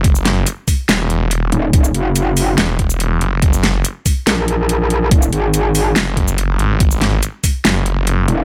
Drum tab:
HH |x-x-x-o-x-x-x-x-|x-x-x-o-x-x-x-x-|x-x-x-o-x-x-x-x-|x-x-x-o-x-x-x-x-|
SH |-x--x-x---------|-x--x-x----x----|-x--x-x---------|-x--x-x----x----|
SD |--o-----o-------|--------o-------|--o-----o-------|--------o-------|
BD |o-----o---------|o---------o-----|o-----o---------|o---------o-----|

HH |x-x-x-o-x-x-x-x-|
SH |-x--x-x---------|
SD |--o-----o-------|
BD |o-----o---------|